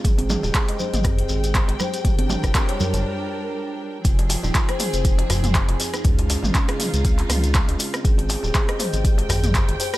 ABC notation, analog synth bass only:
X:1
M:4/4
L:1/16
Q:"Swing 16ths" 1/4=120
K:Fm
V:1 name="Analog synth bass" clef=bass
A,,,2 z E,,, z3 A,,,2 z A,,,2 z A,,, z2 | G,,,2 z F,,, z3 G,,, z8 | F,,,2 z E,,, z3 F,,,2 z F,,,2 z F,,, z2 | D,,2 z A,,, z3 D,,2 z D,,2 z D,, z2 |
A,,,2 z E,,, z3 A,,,2 z A,,,2 z A,,, z2 |]